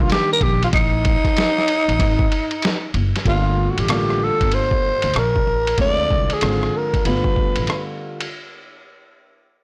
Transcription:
Already playing: upright piano D#3 G3 A#3 D4 G4
0.01 tenor saxophone F4
0.10 tenor saxophone G4, snare, hi-hat pedal, ride
0.33 tenor saxophone A#4
0.41 upright bass A#1, tenor saxophone G4, kick, ride
0.63 tenor saxophone F4, ride
0.73 upright bass A1, tenor saxophone D#4, kick, ride
1.05 kick, ride
1.25 kick, snare, ride
1.37 snare, hi-hat pedal, ride
1.58 snare
1.68 ride
1.88 upright bass A1, ride
1.99 upright bass G#1, kick, ride
2.19 kick
2.32 ride
2.51 ride
2.62 snare, hi-hat pedal, ride
2.94 upright bass F#1, ride
3.16 snare, ride
3.25 upright bass G1, upright piano D3 G3 A3 A#3 F4, tenor saxophone F4, kick, ride
3.70 tenor saxophone F#4
3.78 upright bass A1, tenor saxophone G4, ride
3.88 upright piano D3 G3 A3 A#3 F4, cross-stick, hi-hat pedal, ride
4.10 cross-stick
4.24 tenor saxophone A4
4.41 upright bass G1, kick, ride
4.52 tenor saxophone C5, ride
4.71 kick
5.02 upright bass D2, ride
5.14 upright bass A#1, cross-stick, hi-hat pedal, ride
5.18 tenor saxophone A#4
5.36 kick
5.47 upright bass A1
5.67 ride
5.78 upright bass D2, upright piano D3 F3 G#3 C4 F4, tenor saxophone D5, kick, ride
6.10 upright bass C2, kick
6.30 tenor saxophone G#4, ride
6.41 upright bass G#1, upright piano D3 F3 G#3 C4 F4, cross-stick, hi-hat pedal, ride
6.63 cross-stick
6.77 tenor saxophone A#4
6.94 kick, ride
7.05 upright bass G1, upright piano D3 G3 A3 B3 F4, tenor saxophone B4, ride
7.24 kick
7.36 kick
7.56 upright bass A1, ride
7.67 cross-stick, hi-hat pedal, ride
8.20 ride

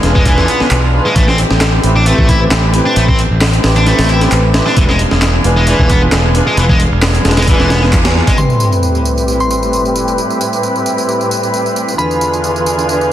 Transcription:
Already playing: tonewheel organ E3 D4 G#4 F5
0.03 fingered electric bass E1, string section D4 F4 G#4 B4, snare, closed hi-hat
0.15 distorted electric guitar G#3, kick
0.25 distorted electric guitar E3, string section D4 F4 G#4 B4, kick, closed hi-hat
0.38 fingered electric bass E2, snare
0.48 distorted electric guitar B3, closed hi-hat
0.60 string section D4 F4 G#4 B4, muted fingered electric bass stroke, snare
0.71 fingered electric bass B1, clap, closed hi-hat
0.93 string section D4 F4 G#4 B4
1.06 distorted electric guitar G#3
1.16 fingered electric bass A1, tonewheel organ A3 C4 G4, distorted electric guitar A3, kick, closed hi-hat
1.28 distorted electric guitar C4, snare
1.38 closed hi-hat
1.51 fingered electric bass A1, snare
1.61 snare, clap, closed hi-hat
1.84 fingered electric bass A1, string section C4 E4 G4 B4, closed hi-hat
1.96 distorted electric guitar D4
2.06 distorted electric guitar A3, string section C4 E4 G4 B4, closed hi-hat
2.18 fingered electric bass A1, kick
2.29 distorted electric guitar E4, kick, closed hi-hat
2.41 string section C4 E4 G4 B4
2.51 fingered electric bass A1, snare, clap, closed hi-hat
2.74 string section C4 E4 G4 B4, closed hi-hat
2.86 distorted electric guitar D4
2.96 fingered electric bass A1, distorted electric guitar A3, closed hi-hat
3.08 distorted electric guitar C4, kick
3.19 closed hi-hat
3.31 fingered electric bass A1
3.41 snare, clap, open hi-hat
3.54 closed hi-hat
3.64 fingered electric bass A1, string section C4 E4 G4 B4, snare, open hi-hat
3.76 distorted electric guitar D4, closed hi-hat
3.86 distorted electric guitar A3, string section C4 E4 G4 B4, snare, closed hi-hat
3.99 fingered electric bass A1, snare, open hi-hat
4.09 distorted electric guitar E4, closed hi-hat
4.21 string section C4 E4 G4 B4, snare, closed hi-hat
4.32 fingered electric bass A1, clap, closed hi-hat
4.54 string section C4 E4 G4 B4, snare, closed hi-hat
4.66 distorted electric guitar D4, snare
4.77 fingered electric bass E1, distorted electric guitar E3, tonewheel organ E3 D4 G#4 F5, kick, closed hi-hat
4.89 distorted electric guitar G#3, snare
4.99 closed hi-hat
5.11 fingered electric bass E1, snare
5.22 snare, clap, closed hi-hat
5.44 fingered electric bass E1, string section D4 F4 G#4 B4, closed hi-hat
5.57 distorted electric guitar G#3
5.67 distorted electric guitar E3, string section D4 F4 G#4 B4, closed hi-hat
5.79 fingered electric bass E1, kick
5.90 distorted electric guitar B3, kick, closed hi-hat
6.02 string section D4 F4 G#4 B4
6.12 fingered electric bass E1, snare, clap, closed hi-hat
6.35 string section D4 F4 G#4 B4, closed hi-hat
6.47 distorted electric guitar G#3
6.57 fingered electric bass E1, distorted electric guitar E3, closed hi-hat
6.69 distorted electric guitar G#3, kick
6.80 closed hi-hat
6.92 fingered electric bass E1
7.02 snare, clap, open hi-hat
7.15 closed hi-hat
7.25 fingered electric bass E1, string section D4 F4 G#4 B4, snare, closed hi-hat
7.31 snare, closed hi-hat
7.37 distorted electric guitar G#3, snare, closed hi-hat
7.42 snare, closed hi-hat
7.47 distorted electric guitar E3, string section D4 F4 G#4 B4, kick, closed hi-hat
7.59 fingered electric bass E1, snare
7.70 distorted electric guitar B3, snare, closed hi-hat
7.82 string section D4 F4 G#4 B4, snare
7.93 fingered electric bass E2, kick, clap, closed hi-hat
8.05 snare, closed hi-hat
8.15 string section D4 F4 G#4 B4, snare
8.27 distorted electric guitar G#3, kick, closed hi-hat
8.38 string section A2 C4 E4 G4 B4, tonewheel organ A2 G3 C4 B4, synth bell C6, tambourine, sub drop
8.50 tambourine
8.60 tambourine
8.72 tambourine
8.83 tambourine
8.95 tambourine
9.05 tambourine
9.18 tambourine
9.28 tambourine
9.40 synth bell C6, tambourine
9.51 synth bell C6, tambourine
9.63 tambourine
9.73 tambourine
9.85 tambourine
9.96 tambourine
10.08 tambourine
10.18 tambourine
10.30 tambourine
10.41 tambourine
10.53 tambourine
10.63 tambourine
10.76 tambourine
10.86 tambourine
10.98 tambourine
11.09 tambourine
11.21 tambourine
11.31 tambourine
11.43 tambourine
11.54 tambourine
11.66 tambourine
11.76 tambourine
11.88 tambourine
11.98 tonewheel organ E2 D3 G#4 F5, string section E3 D4 F4 G#4 B4, synth bell B5, tambourine
12.11 tambourine
12.21 tambourine
12.33 tambourine
12.44 tambourine
12.56 tambourine
12.66 tambourine
12.79 tambourine
12.89 tambourine
13.01 tambourine

